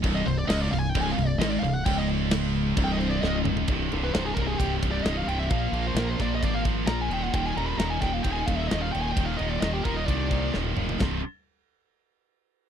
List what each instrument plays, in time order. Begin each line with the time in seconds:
0.03 fingered electric bass C1, distorted electric guitar C2, kick, crash
0.15 lead electric guitar D#5
0.25 fingered electric bass C1, distorted electric guitar C2, lead electric guitar C5, crash
0.39 lead electric guitar D5
0.47 fingered electric bass C#1, distorted electric guitar C#2, lead electric guitar D#5, snare, crash
0.62 lead electric guitar D5
0.71 fingered electric bass C1, distorted electric guitar C2, lead electric guitar F5, snare, crash
0.79 lead electric guitar G#5
0.89 lead electric guitar G5
0.95 fingered electric bass C1, distorted electric guitar C2, kick, crash
1.01 lead electric guitar G#5
1.11 lead electric guitar F5
1.17 fingered electric bass C1, distorted electric guitar C2, crash
1.27 lead electric guitar D5
1.38 fingered electric bass G#1, distorted electric guitar G#2, lead electric guitar D#5, snare, crash
1.49 lead electric guitar D5
1.60 fingered electric bass C1, distorted electric guitar C2, lead electric guitar F5
1.64 crash
1.74 lead electric guitar F#5
1.85 fingered electric bass C#1, distorted electric guitar C#2, lead electric guitar G5, kick, crash
1.98 lead electric guitar D#5
2.09 crash
2.31 snare, crash
2.56 crash
2.77 fingered electric bass C1, distorted electric guitar C2, kick, crash
2.84 lead electric guitar G5
2.92 lead electric guitar D#5
2.98 lead electric guitar C5, crash
3.10 lead electric guitar D5
3.22 fingered electric bass C#1, distorted electric guitar C#2, lead electric guitar D#5, snare
3.45 mid tom
3.57 floor tom
3.68 fingered electric bass C1, distorted electric guitar C2 G2 C3, kick, ride
3.92 fingered electric bass C1, distorted electric guitar C2 G2 C3, ride
4.04 lead electric guitar B4
4.14 fingered electric bass C1, distorted electric guitar C2 G2 C3, lead electric guitar C5, snare, ride
4.26 lead electric guitar G#4
4.35 fingered electric bass C1, distorted electric guitar C2 G2, lead electric guitar A#4, kick, ride
4.39 distorted electric guitar C3
4.47 lead electric guitar G#4
4.58 fingered electric bass C1, distorted electric guitar C2 G2, lead electric guitar G4, kick, ride
4.62 distorted electric guitar C3
4.83 fingered electric bass C1, distorted electric guitar C2 G2 C3, kick, ride
4.91 lead electric guitar D5
5.04 fingered electric bass C1, distorted electric guitar C2 G2 C3, lead electric guitar D#5, snare, ride
5.17 lead electric guitar F5
5.27 fingered electric bass C1, distorted electric guitar C2 G2 C3, lead electric guitar G5, ride
5.39 lead electric guitar E5
5.50 fingered electric bass A#1, distorted electric guitar A#2 F3 A#3, lead electric guitar F5, kick, ride
5.72 fingered electric bass A#1, distorted electric guitar A#2 F3 A#3, ride
5.87 lead electric guitar C5
5.94 fingered electric bass A#1, distorted electric guitar A#2, snare, ride
5.98 distorted electric guitar F3 A#3, lead electric guitar A#4
6.10 lead electric guitar C5
6.20 fingered electric bass A#1, distorted electric guitar A#2 F3 A#3, lead electric guitar D5, kick, snare, ride
6.35 lead electric guitar D#5
6.43 fingered electric bass G#1, distorted electric guitar A#2 F3 A#3, lead electric guitar D5, kick, ride
6.54 lead electric guitar F5
6.65 distorted electric guitar A#2 F3 A#3, kick, ride
6.87 fingered electric bass A#1, distorted electric guitar A#2 F3 A#3, lead electric guitar A#5, snare, ride
7.01 lead electric guitar G#5
7.09 fingered electric bass D#1, distorted electric guitar D#2 A#2 D#3, ride
7.13 lead electric guitar G5
7.22 lead electric guitar F#5
7.33 fingered electric bass D#1, distorted electric guitar D#2 A#2 D#3, lead electric guitar G5, kick, ride
7.47 lead electric guitar G#5
7.56 fingered electric bass D#1, distorted electric guitar D#2 A#2 D#3, lead electric guitar A#5, ride
7.66 lead electric guitar B5
7.78 fingered electric bass D#1, distorted electric guitar D#2 A#2 D#3, lead electric guitar A#5, snare, ride
7.90 lead electric guitar G#5
8.01 fingered electric bass D#1, distorted electric guitar D#2 A#2 D#3, lead electric guitar G5, kick, snare, ride
8.14 lead electric guitar F5
8.23 fingered electric bass D#1, distorted electric guitar D#2 A#2, lead electric guitar G5, kick, ride
8.27 distorted electric guitar D#3
8.32 lead electric guitar G#5
8.46 fingered electric bass D#1, distorted electric guitar D#2 A#2, lead electric guitar F5, kick, ride
8.51 distorted electric guitar D#3
8.56 lead electric guitar E5
8.67 distorted electric guitar D#2, lead electric guitar D#5, ride
8.71 fingered electric bass D#1, distorted electric guitar A#2 D#3, snare
8.82 lead electric guitar F5
8.92 fingered electric bass D#1, distorted electric guitar D#2 A#2 D#3, lead electric guitar G5, ride
9.01 lead electric guitar G#5
9.12 lead electric guitar G5
9.17 fingered electric bass D#1, distorted electric guitar D#2 A#2 D#3, kick, ride
9.26 lead electric guitar F5
9.37 fingered electric bass D#1, distorted electric guitar D#2 A#2 D#3, lead electric guitar D#5, ride
9.49 lead electric guitar D5
9.61 fingered electric bass D#1, distorted electric guitar D#2 A#2 D#3, lead electric guitar D#5, snare, ride
9.73 lead electric guitar G4
9.85 fingered electric bass D#1, distorted electric guitar D#2 A#2 D#3, lead electric guitar A#4, kick, ride
9.96 lead electric guitar D#5
10.07 fingered electric bass C2, distorted electric guitar D#2 A#2 D#3, lead electric guitar D5, kick, ride
10.31 distorted electric guitar D#2 A#2 D#3, kick, ride
10.53 fingered electric bass D#1, distorted electric guitar D#2 A#2 D#3, snare
10.65 mid tom
10.77 fingered electric bass D1, distorted electric guitar D#2 A#2 D#3, mid tom
10.89 floor tom
11.00 fingered electric bass C1, distorted electric guitar C2 G2 C3, kick, snare, splash